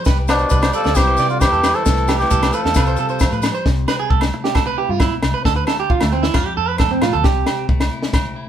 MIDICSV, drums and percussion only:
0, 0, Header, 1, 2, 480
1, 0, Start_track
1, 0, Key_signature, 0, "major"
1, 0, Tempo, 448430
1, 69, Time_signature, 4, 2, 24, 8
1, 9083, End_track
2, 0, Start_track
2, 0, Title_t, "Drums"
2, 50, Note_on_c, 9, 70, 82
2, 67, Note_on_c, 9, 38, 66
2, 69, Note_on_c, 9, 36, 86
2, 157, Note_off_c, 9, 70, 0
2, 174, Note_off_c, 9, 38, 0
2, 176, Note_off_c, 9, 36, 0
2, 295, Note_on_c, 9, 70, 67
2, 307, Note_on_c, 9, 38, 66
2, 310, Note_on_c, 9, 68, 66
2, 402, Note_off_c, 9, 70, 0
2, 414, Note_off_c, 9, 38, 0
2, 415, Note_on_c, 9, 70, 24
2, 417, Note_off_c, 9, 68, 0
2, 522, Note_off_c, 9, 70, 0
2, 531, Note_on_c, 9, 70, 83
2, 550, Note_on_c, 9, 36, 84
2, 638, Note_off_c, 9, 70, 0
2, 657, Note_off_c, 9, 36, 0
2, 662, Note_on_c, 9, 70, 27
2, 670, Note_on_c, 9, 68, 66
2, 672, Note_on_c, 9, 38, 67
2, 769, Note_off_c, 9, 70, 0
2, 777, Note_off_c, 9, 68, 0
2, 779, Note_off_c, 9, 38, 0
2, 781, Note_on_c, 9, 70, 70
2, 888, Note_off_c, 9, 70, 0
2, 897, Note_on_c, 9, 70, 25
2, 918, Note_on_c, 9, 38, 63
2, 1004, Note_off_c, 9, 70, 0
2, 1013, Note_on_c, 9, 70, 83
2, 1025, Note_off_c, 9, 38, 0
2, 1034, Note_on_c, 9, 36, 84
2, 1036, Note_on_c, 9, 38, 67
2, 1039, Note_on_c, 9, 68, 66
2, 1120, Note_off_c, 9, 70, 0
2, 1141, Note_off_c, 9, 36, 0
2, 1143, Note_off_c, 9, 38, 0
2, 1146, Note_off_c, 9, 68, 0
2, 1252, Note_on_c, 9, 70, 65
2, 1276, Note_on_c, 9, 38, 25
2, 1359, Note_off_c, 9, 70, 0
2, 1382, Note_on_c, 9, 70, 26
2, 1383, Note_off_c, 9, 38, 0
2, 1489, Note_off_c, 9, 70, 0
2, 1507, Note_on_c, 9, 70, 87
2, 1513, Note_on_c, 9, 36, 83
2, 1514, Note_on_c, 9, 38, 70
2, 1518, Note_on_c, 9, 68, 67
2, 1614, Note_off_c, 9, 70, 0
2, 1620, Note_off_c, 9, 36, 0
2, 1621, Note_off_c, 9, 38, 0
2, 1625, Note_off_c, 9, 68, 0
2, 1633, Note_on_c, 9, 70, 26
2, 1740, Note_off_c, 9, 70, 0
2, 1749, Note_on_c, 9, 38, 68
2, 1752, Note_on_c, 9, 70, 69
2, 1754, Note_on_c, 9, 68, 66
2, 1856, Note_off_c, 9, 38, 0
2, 1859, Note_off_c, 9, 70, 0
2, 1861, Note_off_c, 9, 68, 0
2, 1867, Note_on_c, 9, 70, 27
2, 1974, Note_off_c, 9, 70, 0
2, 1986, Note_on_c, 9, 70, 90
2, 1994, Note_on_c, 9, 38, 62
2, 1995, Note_on_c, 9, 36, 85
2, 2093, Note_off_c, 9, 70, 0
2, 2101, Note_off_c, 9, 38, 0
2, 2102, Note_off_c, 9, 36, 0
2, 2107, Note_on_c, 9, 70, 27
2, 2214, Note_off_c, 9, 70, 0
2, 2224, Note_on_c, 9, 70, 68
2, 2234, Note_on_c, 9, 68, 65
2, 2238, Note_on_c, 9, 38, 71
2, 2331, Note_off_c, 9, 70, 0
2, 2341, Note_off_c, 9, 68, 0
2, 2345, Note_off_c, 9, 38, 0
2, 2352, Note_on_c, 9, 70, 26
2, 2359, Note_on_c, 9, 38, 26
2, 2459, Note_off_c, 9, 70, 0
2, 2466, Note_off_c, 9, 38, 0
2, 2467, Note_on_c, 9, 70, 90
2, 2476, Note_on_c, 9, 36, 92
2, 2574, Note_off_c, 9, 70, 0
2, 2583, Note_off_c, 9, 36, 0
2, 2594, Note_on_c, 9, 70, 29
2, 2597, Note_on_c, 9, 38, 69
2, 2598, Note_on_c, 9, 68, 64
2, 2701, Note_off_c, 9, 70, 0
2, 2704, Note_off_c, 9, 38, 0
2, 2705, Note_off_c, 9, 68, 0
2, 2706, Note_on_c, 9, 70, 72
2, 2813, Note_off_c, 9, 70, 0
2, 2843, Note_on_c, 9, 38, 71
2, 2934, Note_on_c, 9, 70, 95
2, 2949, Note_off_c, 9, 38, 0
2, 2949, Note_on_c, 9, 38, 67
2, 2954, Note_on_c, 9, 36, 84
2, 2960, Note_on_c, 9, 68, 65
2, 3041, Note_off_c, 9, 70, 0
2, 3056, Note_off_c, 9, 38, 0
2, 3061, Note_off_c, 9, 36, 0
2, 3065, Note_on_c, 9, 70, 25
2, 3067, Note_off_c, 9, 68, 0
2, 3172, Note_off_c, 9, 70, 0
2, 3175, Note_on_c, 9, 70, 66
2, 3282, Note_off_c, 9, 70, 0
2, 3302, Note_on_c, 9, 70, 25
2, 3409, Note_off_c, 9, 70, 0
2, 3419, Note_on_c, 9, 70, 89
2, 3433, Note_on_c, 9, 38, 70
2, 3435, Note_on_c, 9, 36, 84
2, 3435, Note_on_c, 9, 68, 67
2, 3526, Note_off_c, 9, 70, 0
2, 3540, Note_off_c, 9, 38, 0
2, 3542, Note_off_c, 9, 36, 0
2, 3542, Note_off_c, 9, 68, 0
2, 3552, Note_on_c, 9, 70, 27
2, 3659, Note_off_c, 9, 70, 0
2, 3663, Note_on_c, 9, 70, 72
2, 3676, Note_on_c, 9, 68, 63
2, 3677, Note_on_c, 9, 38, 71
2, 3770, Note_off_c, 9, 70, 0
2, 3783, Note_off_c, 9, 68, 0
2, 3784, Note_off_c, 9, 38, 0
2, 3795, Note_on_c, 9, 70, 25
2, 3902, Note_off_c, 9, 70, 0
2, 3914, Note_on_c, 9, 38, 63
2, 3915, Note_on_c, 9, 36, 75
2, 4021, Note_off_c, 9, 38, 0
2, 4022, Note_off_c, 9, 36, 0
2, 4152, Note_on_c, 9, 38, 62
2, 4152, Note_on_c, 9, 68, 57
2, 4259, Note_off_c, 9, 38, 0
2, 4259, Note_off_c, 9, 68, 0
2, 4394, Note_on_c, 9, 36, 85
2, 4501, Note_off_c, 9, 36, 0
2, 4506, Note_on_c, 9, 68, 61
2, 4516, Note_on_c, 9, 38, 67
2, 4613, Note_off_c, 9, 68, 0
2, 4623, Note_off_c, 9, 38, 0
2, 4761, Note_on_c, 9, 38, 65
2, 4868, Note_off_c, 9, 38, 0
2, 4869, Note_on_c, 9, 68, 64
2, 4875, Note_on_c, 9, 36, 85
2, 4877, Note_on_c, 9, 38, 61
2, 4976, Note_off_c, 9, 68, 0
2, 4982, Note_off_c, 9, 36, 0
2, 4984, Note_off_c, 9, 38, 0
2, 5349, Note_on_c, 9, 68, 62
2, 5353, Note_on_c, 9, 38, 64
2, 5355, Note_on_c, 9, 36, 81
2, 5456, Note_off_c, 9, 68, 0
2, 5460, Note_off_c, 9, 38, 0
2, 5462, Note_off_c, 9, 36, 0
2, 5593, Note_on_c, 9, 38, 68
2, 5593, Note_on_c, 9, 68, 64
2, 5700, Note_off_c, 9, 38, 0
2, 5700, Note_off_c, 9, 68, 0
2, 5836, Note_on_c, 9, 36, 83
2, 5836, Note_on_c, 9, 38, 62
2, 5943, Note_off_c, 9, 36, 0
2, 5943, Note_off_c, 9, 38, 0
2, 6068, Note_on_c, 9, 68, 58
2, 6076, Note_on_c, 9, 38, 66
2, 6175, Note_off_c, 9, 68, 0
2, 6183, Note_off_c, 9, 38, 0
2, 6315, Note_on_c, 9, 36, 86
2, 6422, Note_off_c, 9, 36, 0
2, 6428, Note_on_c, 9, 68, 66
2, 6432, Note_on_c, 9, 38, 67
2, 6535, Note_off_c, 9, 68, 0
2, 6539, Note_off_c, 9, 38, 0
2, 6671, Note_on_c, 9, 38, 68
2, 6778, Note_off_c, 9, 38, 0
2, 6785, Note_on_c, 9, 38, 62
2, 6788, Note_on_c, 9, 68, 67
2, 6793, Note_on_c, 9, 36, 82
2, 6892, Note_off_c, 9, 38, 0
2, 6895, Note_off_c, 9, 68, 0
2, 6900, Note_off_c, 9, 36, 0
2, 7261, Note_on_c, 9, 68, 64
2, 7270, Note_on_c, 9, 38, 66
2, 7274, Note_on_c, 9, 36, 83
2, 7368, Note_off_c, 9, 68, 0
2, 7377, Note_off_c, 9, 38, 0
2, 7381, Note_off_c, 9, 36, 0
2, 7509, Note_on_c, 9, 68, 64
2, 7514, Note_on_c, 9, 38, 68
2, 7616, Note_off_c, 9, 68, 0
2, 7621, Note_off_c, 9, 38, 0
2, 7751, Note_on_c, 9, 38, 65
2, 7753, Note_on_c, 9, 36, 86
2, 7858, Note_off_c, 9, 38, 0
2, 7860, Note_off_c, 9, 36, 0
2, 7988, Note_on_c, 9, 38, 68
2, 7992, Note_on_c, 9, 68, 62
2, 8095, Note_off_c, 9, 38, 0
2, 8099, Note_off_c, 9, 68, 0
2, 8230, Note_on_c, 9, 36, 90
2, 8337, Note_off_c, 9, 36, 0
2, 8351, Note_on_c, 9, 38, 65
2, 8356, Note_on_c, 9, 68, 65
2, 8459, Note_off_c, 9, 38, 0
2, 8463, Note_off_c, 9, 68, 0
2, 8590, Note_on_c, 9, 38, 65
2, 8697, Note_off_c, 9, 38, 0
2, 8704, Note_on_c, 9, 38, 64
2, 8708, Note_on_c, 9, 36, 81
2, 8711, Note_on_c, 9, 68, 67
2, 8811, Note_off_c, 9, 38, 0
2, 8815, Note_off_c, 9, 36, 0
2, 8819, Note_off_c, 9, 68, 0
2, 9083, End_track
0, 0, End_of_file